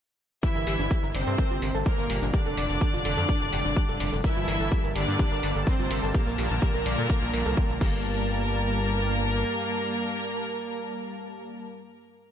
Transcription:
0.43 synth drone G2, supersaw synth E3 E4, synth pluck G4 G5, violin section E5, kick, shaker
0.55 analog synth bass G1, synth pluck A#4 A#5, shaker
0.67 analog synth bass G1, synth pluck G4 G5, open hi-hat, shaker
0.79 analog synth bass G1, synth pluck D4 D5, shaker
0.91 synth pluck G4 G5, kick, shaker
1.03 analog synth bass G1, synth pluck A#4 A#5, shaker
1.15 analog synth bass G1, supersaw synth C3 C4, violin section C5, synth pluck D5 D6, open hi-hat, shaker
1.27 analog synth bass G2, synth pluck A4 A5, shaker
1.38 synth pluck A#4 A#5, kick, shaker
1.51 analog synth bass G1, synth pluck F4 F5, shaker
1.62 analog synth bass G1, synth pluck A#4 A#5, open hi-hat
1.75 analog synth bass G1, synth pluck A4 A5, shaker
1.86 supersaw synth A#2 A#3, synth pluck G4 G5, violin section A#4, kick, shaker
1.98 analog synth bass G1, synth pluck A#4 A#5, shaker
2.10 analog synth bass G1, synth pluck G4 G5, open hi-hat, shaker
2.22 analog synth bass G1, synth pluck D4 D5, shaker
2.34 supersaw synth D3 D4, synth pluck G4 G5, violin section D5, kick, shaker
2.46 analog synth bass F1, synth pluck A4 A5, shaker
2.57 analog synth bass F1, synth pluck D5 D6, open hi-hat, shaker
2.70 analog synth bass F1, synth pluck A4 A5, shaker
2.81 synth pluck A4 A5, kick, shaker
2.94 analog synth bass F1, synth pluck F4 F5, shaker
3.05 analog synth bass F1, synth pluck A4 A5, open hi-hat, shaker
3.17 analog synth bass F2, synth pluck A4 A5, shaker
3.29 synth pluck G4 G5, kick, shaker
3.41 analog synth bass F1, synth pluck A4 A5, shaker
3.53 analog synth bass F1, synth pluck G4 G5, open hi-hat
3.65 analog synth bass F1, synth pluck D4 D5, shaker
3.76 synth pluck G4 G5, kick, shaker
3.89 analog synth bass F1, synth pluck A4 A5, shaker
4.00 analog synth bass F1, synth pluck D5 D6, open hi-hat, shaker
4.13 analog synth bass F1, synth pluck A4 A5, shaker
4.24 supersaw synth E3 E4, analog synth pad G3 A#3 A5, synth pluck A#4 A#5, violin section E5, kick, shaker
4.36 analog synth bass G1, synth pluck F4 F5, shaker
4.48 analog synth bass G1, synth pluck A#4 A#5, open hi-hat, shaker
4.60 analog synth bass G1, synth pluck A4 A5, shaker
4.72 synth pluck G4, kick, shaker
4.84 analog synth bass G1, synth pluck A#4 A#5, shaker
4.95 analog synth bass G1, supersaw synth D3 D4, synth pluck G4 G5, violin section D5, open hi-hat, shaker
5.08 analog synth bass G2, synth pluck D4 D5, shaker
5.19 synth pluck G4 G5, kick, shaker
5.32 analog synth bass G1, synth pluck A#4 A#5, shaker
5.43 analog synth bass G1, synth pluck D5 D6, open hi-hat
5.55 analog synth bass G1, synth pluck A4 A5, shaker
5.67 supersaw synth C3 C4, synth pluck A#4 A#5, violin section C5, kick, shaker
5.79 analog synth bass G1, synth pluck F4 F5, shaker
5.91 analog synth bass G1, synth pluck A#4 A#5, open hi-hat, shaker
6.03 analog synth bass G1, synth pluck A4 A5, shaker
6.14 supersaw synth A#2 A#3, analog synth pad D3, synth pluck G4, violin section A#4, kick, shaker
6.27 analog synth bass A#1, synth pluck A#4 A#5, shaker
6.38 analog synth bass A#1, synth pluck G4 G5, open hi-hat, shaker
6.51 analog synth bass A#1, synth pluck D4 D5, shaker
6.62 synth pluck G4 G5, kick, shaker
6.74 analog synth bass A#1, synth pluck A#4 A#5, shaker
6.86 analog synth bass A#1, synth pluck D5 D6, open hi-hat, shaker
6.98 analog synth bass A#2, synth pluck A4 A5, shaker
7.10 synth pluck A#4 A#5, kick, shaker
7.22 analog synth bass A#1, synth pluck F4 F5, shaker
7.34 analog synth bass A#1, synth pluck A#4 A#5, open hi-hat
7.46 analog synth bass C2, synth pluck A4 A5, shaker
7.57 synth pluck G4 G5, kick, shaker
7.70 analog synth bass A#1, synth pluck A#4 A#5, shaker
7.81 analog synth bass G1, synth drone G2, analog synth pad G3 A#3 A5, supersaw synth A#3, synth pluck G4, violin section A#4, kick, crash

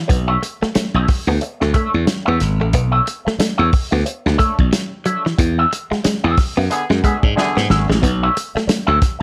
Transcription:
0.08 slap bass B1, clean electric guitar B3, muted clean electric guitar stroke, kick, closed hi-hat
0.28 clean electric guitar D4 A4 C#5 E5
0.41 muted clean electric guitar stroke, closed hi-hat
0.62 clean electric guitar A3, muted clean electric guitar stroke, muted slap bass stroke, snare
0.75 clean electric guitar A3, muted clean electric guitar stroke, muted slap bass stroke, snare, closed hi-hat
0.94 slap bass B1, clean electric guitar D4 A4 C#5 E5
1.08 muted clean electric guitar stroke, kick, snare, open hi-hat
1.27 slap bass D2, clean electric guitar B3, muted clean electric guitar stroke
1.41 muted clean electric guitar stroke, closed hi-hat
1.60 slap bass D2, clean electric guitar A3, muted clean electric guitar stroke, snare
1.73 clean electric guitar A3 D4 A4 C#5 E5, kick, closed hi-hat
1.93 slap bass E2, muted clean electric guitar stroke
2.05 muted clean electric guitar stroke, snare, closed hi-hat
2.25 slap bass E2, clean electric guitar B3 D4 A4 C#5 E5
2.40 slap bass G#1, muted clean electric guitar stroke, snare, closed hi-hat
2.60 slap bass A1, clean electric guitar A3, muted clean electric guitar stroke
2.73 slap bass B1, clean electric guitar B3, muted clean electric guitar stroke, kick, closed hi-hat
2.92 clean electric guitar D4 A4 C#5 E5
3.06 muted clean electric guitar stroke, closed hi-hat
3.25 clean electric guitar A3, muted clean electric guitar stroke, muted slap bass stroke, snare
3.39 clean electric guitar A3, muted slap bass stroke, muted clean electric guitar stroke, snare, closed hi-hat
3.58 slap bass E2, clean electric guitar D4 A4 C#5 E5
3.71 muted clean electric guitar stroke, kick, open hi-hat
3.91 slap bass D2, clean electric guitar B3, muted clean electric guitar stroke
4.06 muted clean electric guitar stroke, closed hi-hat
4.26 slap bass D2, muted clean electric guitar stroke, snare
4.38 clean electric guitar A3 D4 A4 C#5 E5, kick, closed hi-hat
4.58 slap bass B1, muted clean electric guitar stroke, kick
4.72 muted clean electric guitar stroke, snare, closed hi-hat
5.05 clean electric guitar F#3 D4 A4 C#5 E5, closed hi-hat
5.24 clean electric guitar E3, muted clean electric guitar stroke, snare
5.38 slap bass E2, clean electric guitar E3, muted clean electric guitar stroke, kick, closed hi-hat
5.58 clean electric guitar D4 F#4 G#4 E5
5.72 muted clean electric guitar stroke, closed hi-hat
5.91 clean electric guitar G#3, muted clean electric guitar stroke, muted slap bass stroke, snare
6.04 clean electric guitar G#3, muted clean electric guitar stroke, muted slap bass stroke, snare, closed hi-hat
6.24 slap bass E2, clean electric guitar D4 F#4 G#4 E5
6.37 muted clean electric guitar stroke, kick, snare, open hi-hat
6.57 slap bass F#2, clean electric guitar B3, muted clean electric guitar stroke
6.70 horn section D3 B3 G#4, muted clean electric guitar stroke, closed hi-hat
6.90 slap bass F#2, clean electric guitar G#3, muted clean electric guitar stroke, snare
7.02 horn section D3 B3 G#4, clean electric guitar G#3 D4 F#4 G#4 E5, kick, closed hi-hat
7.23 slap bass G#2, muted clean electric guitar stroke, kick
7.35 horn section D3 B3 G#4, clean electric guitar D4 F#4 G#4 E5, snare
7.57 slap bass G#2, clean electric guitar B3, muted clean electric guitar stroke, snare
7.70 slap bass G#1, clean electric guitar D4 F#4 G#4 E5, muted clean electric guitar stroke, snare
7.88 slap bass A1, clean electric guitar G#3, muted clean electric guitar stroke, snare
8.02 slap bass B1, clean electric guitar B3, muted clean electric guitar stroke, kick, closed hi-hat
8.23 clean electric guitar D4 A4 C#5 E5
8.36 muted clean electric guitar stroke, closed hi-hat
8.55 clean electric guitar A3, muted clean electric guitar stroke, muted slap bass stroke, snare
8.67 clean electric guitar A3, muted clean electric guitar stroke, muted slap bass stroke, snare, closed hi-hat
8.87 slap bass D2, clean electric guitar D4 A4 C#5 E5
9.00 muted clean electric guitar stroke, kick, snare, closed hi-hat
9.19 muted clean electric guitar stroke

